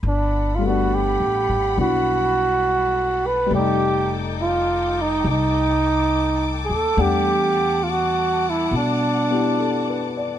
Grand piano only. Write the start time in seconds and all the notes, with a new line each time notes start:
0.58 G3 A3
0.66 B3 D4
1.76 B3 D4 E4
3.46 G3
3.50 A3 D5
3.58 D#4
6.98 G3 A3 D4 F#5
9.30 B3 E4 G4
9.59 A4
9.89 B4
10.17 D5